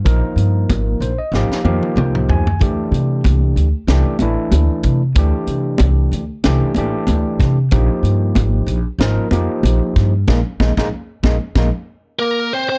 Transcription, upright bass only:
X:1
M:4/4
L:1/16
Q:"Swing 16ths" 1/4=94
K:Bblyd
V:1 name="Upright bass" clef=bass
B,,, z G,,2 _A,,,2 B,,, z A,,, z F,, z C,,2 D,,2 | D,, z C,2 C,,2 D,, z C,, z A,,, z D,, z C,2 | D,, z C,2 C,,2 D,, z C,, z A,,, z D,, z C,2 | B,,, z G,,2 _A,,,2 B,,, z A,,, z F,, z B,,, z G,,2 |
B,,, z B,,, B,,, z2 B,,, z B,,, z6 z |]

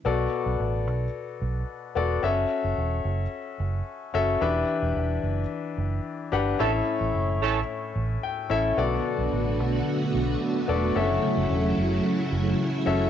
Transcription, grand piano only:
X:1
M:4/4
L:1/8
Q:1/4=110
K:Bm
V:1 name="Grand piano"
[B,FAd]4 z3 [B,FAd] | [CFAe]4 z3 [CFAe] | [DGBe]4 z3 [DGBf] | [CEAe]4 z3 [CEAe] |
[B,FAd]4 z3 [B,FAd] | [CFAe]4 z3 [CFAe] |]
V:2 name="Grand piano" clef=bass
B,,3 z4 z | z8 | E,3 z4 z | A,,3 z3 g2 |
B,,3 z4 z | z8 |]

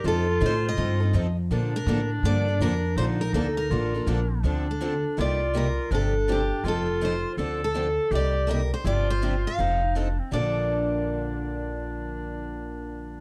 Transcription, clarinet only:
X:1
M:4/4
L:1/16
Q:"Swing" 1/4=163
K:Bb
V:1 name="Clarinet"
F12- F z3 | D16 | E8 F4 D4 | D8 F8 |
D8 F8 | A8 G4- G z3 | F8 E4 D2 C2 | D16- |
D16 |]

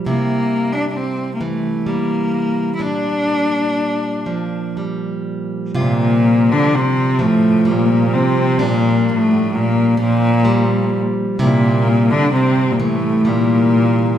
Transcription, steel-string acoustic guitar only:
X:1
M:6/8
L:1/8
Q:3/8=43
K:Cmix
V:1 name="Steel-string acoustic guitar" clef=bass
[C,E]3 E, G,2 | [B,,D] B,2 F, G,2 | [C,F]3 F, G,2 | D3 F, G,2 |
[C,E]3 E, G,2 |]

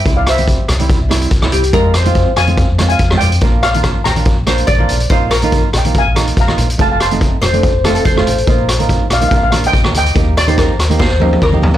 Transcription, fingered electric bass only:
X:1
M:4/4
L:1/16
Q:"Swing 16ths" 1/4=142
K:Bbmix
V:1 name="Fingered electric bass" clef=bass
C,,6 C,,3 C,,3 C,,2 C,,2 | F,,6 F,,3 F,,3 F,,2 F,,2 | B,,,6 B,,,3 B,,,3 B,,,2 B,,,2 | B,,,6 B,,,3 B,,,3 B,,,2 B,,,2 |
F,,,6 F,,,3 F,,,3 F,,,2 =A,,,2 | B,,,6 B,,,2 B,,, B,,,3 B,,,2 D,,2 | E,,6 E,,3 E,,3 E,,2 E,,2 |]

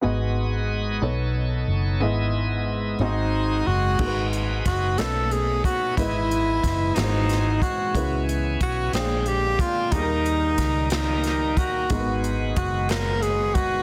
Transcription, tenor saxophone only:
X:1
M:6/8
L:1/8
Q:3/8=61
K:G#m
V:1 name="Tenor saxophone"
z6 | z3 D2 F- | F z F =A G F | E3 D2 F- |
F z F G =G ^E | D3 D2 F- | F z F A G F |]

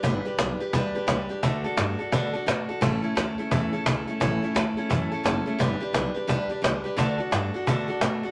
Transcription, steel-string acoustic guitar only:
X:1
M:4/4
L:1/8
Q:"Swing" 1/4=173
K:D
V:1 name="Steel-string acoustic guitar"
[G,DGB] [DGB] [G,DGB] [DGB] [G,DGB] [DGB] [G,DGB] [DGB] | [D,A,DFA] [DFA] [A,DFA] [DFA] [D,A,DFA] [DFA] [A,DFA] [DFA] | [A,,E,A,CEA] [A,CEA] [A,CEA] [A,CEA] [A,,E,A,CEA] [A,CEA] [A,CEA] [A,CEA] | [A,,E,A,CEA] [A,CEA] [A,CEA] [A,CEA] [A,,E,A,CEA] [A,CEA] [A,CEA] [A,CEA] |
[G,DGB] [DGB] [G,DGB] [DGB] [G,DGB] [DGB] [G,DGB] [DGB] | [D,A,DFA] [DFA] [A,DFA] [DFA] [D,A,DFA] [DFA] [A,DFA] [DFA] |]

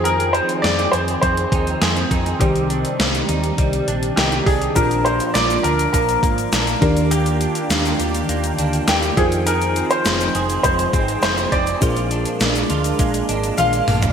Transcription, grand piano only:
X:1
M:4/4
L:1/16
Q:1/4=102
K:Fdor
V:1 name="Grand piano"
B2 c2 d2 c2 c8 | G4 z8 G2 A2 | B2 c2 d2 B2 B8 | G4 z8 G2 A2 |
B3 c4- c c4 c2 d2- | d12 f4 |]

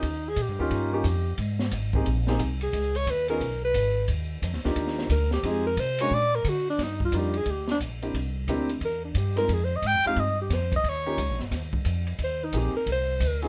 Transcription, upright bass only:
X:1
M:4/4
L:1/8
Q:"Swing" 1/4=178
K:Eb
V:1 name="Upright bass" clef=bass
E,,2 (3B,, G,, E,, G,,2 F,,2 | A,,2 A,,,2 B,,,2 C,,2 | _D,,2 E,,2 _C,,2 A,,,2 | E,,2 (3F,, E,, D,, E,,2 D,,2 |
F,,2 C,2 B,,2 D,2 | G,,2 F,,2 D,,2 B,,,2 | C,,2 D,,2 =E,,2 G,,2 | F,,2 (3A,, F,, E,, G,,2 F,,2 |
E,,2 (3_D,, B,,, G,,, E,,2 F,,2 | E,,2 B,,, z C,,2 D,,2 |]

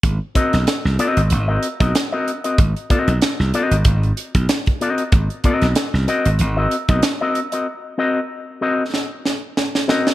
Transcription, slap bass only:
X:1
M:4/4
L:1/16
Q:"Swing 16ths" 1/4=94
K:Abmix
V:1 name="Slap bass" clef=bass
A,,, z2 _C,, z =C,, z A,,, A,,,2 z _C,, z4 | A,,, z2 _C,, z =C,, z A,,, A,,,2 z _C,, z4 | A,,, z2 _C,, z =C,, z A,,, A,,,2 z _C,, z4 | z16 |]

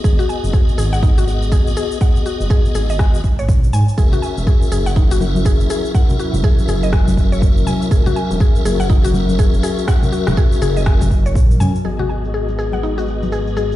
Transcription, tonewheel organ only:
X:1
M:4/4
L:1/8
Q:"Swing 16ths" 1/4=122
K:G#m
V:1 name="Tonewheel organ"
[B,FGd]4- [B,FGd] [B,FGd]3 | [B,FGd]4- [B,FGd] z3 | [CFAe]4- [CFAe] [CFAe]3 | [CFAe]4- [CFAe] [CFAe]3 |
[CFAe]4- [CFAe] [CFAe]3 | [CFAe]4- [CFAe] z3 | [B,FGd]8 |]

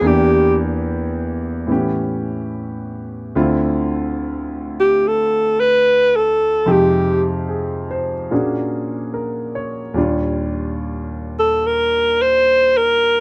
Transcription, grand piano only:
X:1
M:4/4
L:1/16
Q:"Swing" 1/4=73
K:Ddor
V:1 name="Grand piano"
z16 | z16 | z4 _A2 c3 z3 _B2 ^c2- | ^c z12 z3 |]
V:2 name="Grand piano"
[E,,E,_B,DG]8 [A,,E,=B,^CG]8 | [D,,D,CEF]16 | [F,,C,_A,_EG]8 [_B,,_B,^CD^F_A]8 | [_E,,_B,,G,DF]16 |]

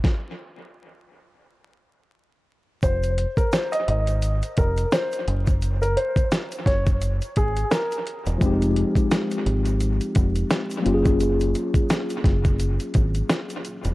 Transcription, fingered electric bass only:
X:1
M:4/4
L:1/16
Q:"Swing 16ths" 1/4=86
K:Fphr
V:1 name="Fingered electric bass" clef=bass
z16 | F,,,3 z3 A,,,4 F,,,2 z2 G,,,2- | G,,,3 z3 G,,,4 A,,,2 z3 =E,,, | F,,,3 z3 A,,,4 F,,,2 z2 G,,,2- |
G,,,3 z3 G,,,4 A,,,2 z3 =E,,, |]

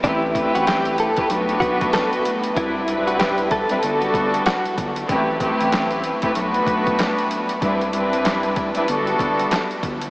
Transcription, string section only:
X:1
M:4/4
L:1/16
Q:"Swing 16ths" 1/4=95
K:Ador
V:1 name="String section"
[A,CEGB]2 [A,CEGB]4- [A,CEGB] [A,CEGB] [A,B,DFB]6- [A,B,DFB] z | [G,CDEB]2 [G,CDEB]4- [G,CDEB] [G,CDEB] [G,B,DFA]6 z2 | [A,CEGB]2 [A,CEGB]4- [A,CEGB] [A,CEGB] [A,B,DFB]6- [A,B,DFB] z | [G,CDEB]2 [G,CDEB]4- [G,CDEB] [G,CDEB] [G,B,DFA]6 z2 |]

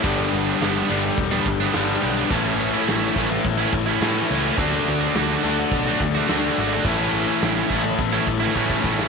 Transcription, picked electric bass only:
X:1
M:4/4
L:1/8
Q:1/4=106
K:Amix
V:1 name="Picked electric bass" clef=bass
G,,, G,,, G,,, G,,, E,,, G,,, G,,, B,,, | A,,,2 A,,, A,,, A,,, A,,, A,, C,, | D,, D,, D,, D,, B,,, D,, D,, ^G,,, | A,,,2 A,,, A,,, A,,, A,,, A,, A,,, |]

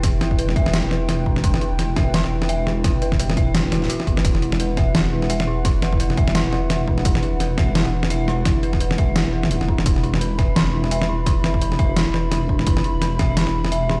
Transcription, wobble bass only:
X:1
M:4/4
L:1/16
Q:"Swing 16ths" 1/4=171
K:Clyd
V:1 name="Wobble bass" clef=bass
E,,,2 z E,,,12- E,,,- | E,,, z2 E,,,12- E,,,- | E,,, z2 E,,,6- E,,, E,,,2 z2 F,,,2 | E,,,16- |
E,,,2 z E,,,12- E,,,- | E,,, z2 E,,,12- E,,,- | E,,, z2 E,,,8 G,,, D,,, E,,,3 | E,,,16- |
E,,,2 z E,,,12- E,,,- | E,,, z2 E,,,12- E,,, |]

